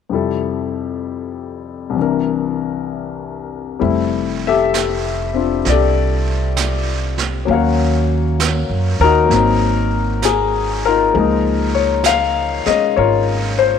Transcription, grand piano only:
0.09 F2 C3 G3 E4
0.14 A4
1.90 C2
1.94 C3 E3
1.99 D4 A#4
3.79 G3 A3 C4 E4
4.47 G4 A4 E5
5.34 C4 D4 F4
5.69 G4 A4 D5
7.45 F#3 A#3 C#4
7.51 F#4 A#4 C#5 F5
9.01 D#4 F#4 A#4
9.25 F#3 A#3
9.32 C4 D#4
10.25 G#4
10.85 D#4 F4 A#4
11.13 F3 G#3 A#3
11.19 D#4
11.75 C#5
12.06 F5
12.66 G#3 C#4 D#5
12.96 F4 A#4 C#5
13.59 C5

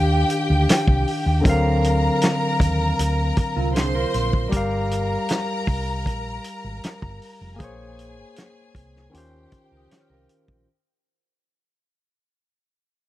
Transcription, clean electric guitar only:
3.56 C4 F4
3.75 D4 G#4
3.95 F4 A#4
9.72 F4 A#4
9.91 G4 C#5
10.10 F4 A#4

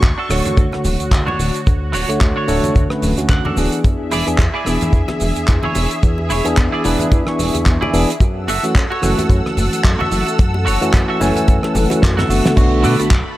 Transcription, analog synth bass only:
0.03 D2
0.30 D1
0.57 D2
0.85 D1
1.00 D2
1.11 D2
1.39 D1
1.67 D2
1.93 D1
2.09 D2
2.21 D2
2.49 D1
2.76 D2
3.03 D1
3.18 D2
3.29 D2
3.57 D1
3.84 E2
4.12 E1
4.28 E2
4.39 E2
4.67 E1
4.93 E2
5.21 E1
5.37 E2
5.49 E2
5.76 E1
6.03 E2
6.30 E1
6.46 E2
6.58 E2
6.85 E1
7.12 E2
7.39 E1
7.55 E2
7.66 E2
7.94 E1
8.20 F#2
8.47 F#1
8.63 F#2
8.75 F#2
9.03 F#1
9.29 F#2
9.57 F#1
9.73 F#2
9.84 F#2
10.12 F#1
10.39 F#2
10.67 F#1
10.82 F#2
10.94 F#2
11.21 F#1
11.48 F#2
11.75 F#1
11.91 F#2
12.03 F#2
12.29 F#1
12.57 B1
12.85 B2
13.00 B1
13.11 B1

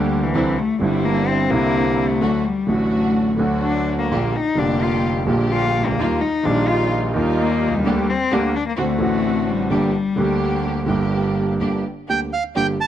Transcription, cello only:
Already playing: G3
0.24 E3
0.58 A3
0.82 G3
1.05 A#3
1.28 C4
1.51 A#3
2.09 A3
2.45 G3
2.69 A3
3.63 D4
3.99 A#3
4.36 D#4
4.58 D4
4.83 F4
5.53 F4
5.87 A#3
6.21 D#4
6.46 D4
6.68 F4
7.39 A#3
7.74 G3
8.10 C4
8.33 A#3
8.56 D4
8.68 A#3
8.79 A3
9.50 G3

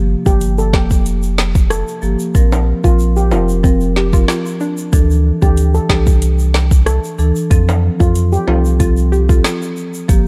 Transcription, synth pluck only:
3.64 C4
3.96 G4
4.13 F4
4.28 F4
4.61 D4
8.80 F4
9.12 G4
9.29 F4

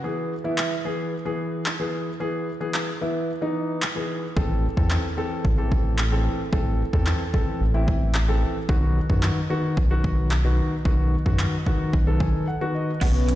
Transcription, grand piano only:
0.04 E3 B3 G#4
0.44 E3 B3 E4
0.85 E3 B3 G#4
1.25 E3 B3 G#4
1.80 E3 B3 G#4
2.20 E3 B3 G#4
2.60 E3 B3 G#4
3.01 E3 B3 E4
3.42 E3 B3 D#4
3.96 E3 B3 G#4
4.36 E3 C4 A4
4.77 E3 C4 A4
5.17 E3 C4 A4
5.58 E3 C4 A4
6.12 E3 C4 A4
6.52 E3 C4 A4
6.93 E3 C4 A4
7.34 E3 C4 A4
7.74 E3 C4 E4
8.28 E3 C4 A4
8.69 D#3 B3 F#4
9.09 D#3 B3 F#4
9.50 D#3 B3 F#4
9.90 D#3 B3 F#4
10.44 D#3 B3 F#4
10.85 D#3 B3 F#4
11.26 D#3 B3 F#4
11.66 D#3 B3 F#4
12.07 D#3 B3 A4
12.21 G#5
12.48 F#5
12.61 D#3 B3 F#4
12.75 D#5
13.01 C#3 B3 F#4

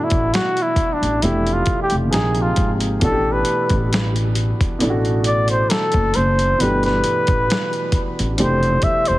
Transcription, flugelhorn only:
0.04 E4
0.34 F#4
0.63 E4
0.93 D4
1.23 E4
1.53 F4
1.82 G4
2.12 G#4
2.42 F4
3.02 A4
3.32 B4
5.27 D5
5.50 C5
5.70 A4
6.16 C5
6.61 B4
6.85 B4
8.40 C5
8.84 E5
9.08 C5

